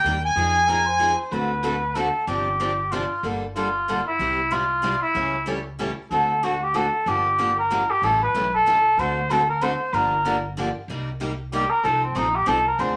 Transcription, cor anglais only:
0.36 0.70 G#4 medium
0.68 0.87 A#4 medium
0.86 1.33 C5 medium
1.32 1.97 B4 loud
1.95 2.27 A4 medium
2.27 2.93 G4 medium
2.92 3.24 F4 medium
3.57 4.03 F4 medium
4.07 4.53 E4 medium
4.52 5.02 F4 medium
5.02 5.44 E4 medium
6.11 6.45 A4 medium
6.44 6.62 F#4 medium
6.63 6.77 G4 medium
6.76 7.10 A4 medium
7.08 7.58 G4 medium
7.59 7.92 A#4 medium
7.90 8.06 G4 medium
8.04 8.22 A4 medium
8.22 8.52 B4 loud
8.55 9.01 A4 medium
8.99 9.32 C5 medium
9.31 9.49 A4 medium
9.49 9.64 A#4 medium
9.62 9.95 C5 loud
9.94 10.44 A#4 medium
11.53 11.71 G4 medium
11.70 11.86 A#4 loud
11.84 12.03 A4 medium
12.03 12.18 C4 soft
12.17 12.37 D#4 medium
12.35 12.50 G4 medium
12.48 12.66 A4 medium
12.67 12.81 A#4 medium
12.80 12.96 C5 medium

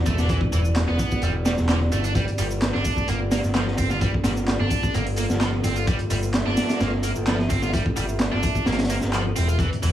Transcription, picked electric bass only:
0.06 0.37 E1 medium
0.53 0.84 E1 loud
0.88 0.97 E1 loud
1.23 1.53 E1 loud
1.58 1.88 E1 medium
1.92 2.23 G1 medium
2.39 2.70 G1 loud
2.75 2.83 G1 loud
3.09 3.40 G1 loud
3.44 3.74 G1 medium
3.78 4.09 G1 medium
4.25 4.56 G1 loud
4.60 4.69 G1 loud
4.94 5.25 G1 loud
5.30 5.60 G1 medium
5.64 5.95 G1 medium
6.11 6.42 G1 loud
6.46 6.55 G1 loud
6.80 7.11 G1 loud
7.16 7.46 G1 medium
7.50 7.81 G1 medium
7.97 8.28 G1 loud
8.33 8.41 G1 loud
8.66 8.97 G1 loud
9.02 9.32 G1 loud
9.37 9.67 E1 medium
9.83 9.92 E1 loud

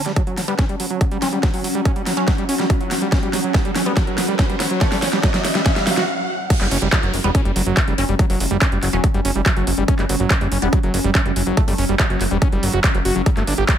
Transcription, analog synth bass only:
6.61 6.67 F#1 medium
6.71 6.78 F#1 loud
6.82 6.88 F#1 loud
7.03 7.09 F#1 medium
7.14 7.20 F#1 loud
7.24 7.30 E1 medium
7.45 7.52 F#1 medium
7.56 7.62 F#1 loud
7.66 7.73 F#1 medium
7.88 7.94 F#1 medium
7.98 8.04 F#1 loud
8.09 8.15 F#1 medium
8.30 8.36 F#1 medium
8.40 8.47 F#1 loud
8.51 8.57 F#1 medium
8.72 8.78 F#1 medium
8.83 8.89 F#1 loud
8.93 8.99 E1 medium
9.14 9.21 F#1 medium
9.25 9.31 F#1 loud
9.35 9.42 F#1 medium
9.57 9.63 F#1 medium
9.67 9.73 F#1 loud
9.78 9.84 F#1 medium
9.99 10.05 F#1 medium
10.09 10.16 F#1 loud
10.20 10.26 F#1 loud
10.41 10.47 F#1 medium
10.52 10.58 F#1 loud
10.62 10.68 E1 medium
10.83 10.90 F#1 medium
10.94 11.00 F#1 loud
11.04 11.11 F#1 loud
11.26 11.32 F#1 loud
11.36 11.42 F#1 loud
11.47 11.53 F#1 medium
11.68 11.74 F#1 medium
11.78 11.85 F#1 loud
11.89 11.95 F#1 medium
12.10 12.16 F#1 medium
12.21 12.27 F#1 loud
12.31 12.38 E1 medium
12.52 12.59 F#1 medium
12.63 12.69 F#1 loud
12.73 12.80 F#1 medium
12.95 13.01 F#1 medium
13.05 13.11 F#1 loud
13.16 13.22 F#1 medium
13.37 13.43 G1 medium
13.47 13.54 G1 loud
13.58 13.64 G1 medium

